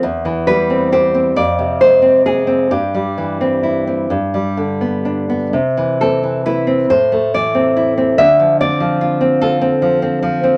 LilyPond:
\new Staff \with { instrumentName = "Nylon-string guitar" } { \time 6/8 \key c \major \tempo 4. = 45 << { r8 b'8 c''8 d''8 c''8 aes'8 | g'4. r4. | r8 a'8 b'8 c''8 d''4 | e''8 d''4 a'4. | } \\ { e,16 e16 g16 c'16 g'16 c'16 f,16 c16 aes16 c'16 aes16 c'16 | g,16 g16 e16 c'16 e'16 c'16 g,16 g16 d16 b16 d'16 b16 | c16 e16 c'16 e16 e'16 c'16 a,16 a16 e16 c'16 e'16 c'16 | d16 f16 c'16 f16 f'16 c'16 f'16 c'16 f16 c'16 f16 c'16 | } >> }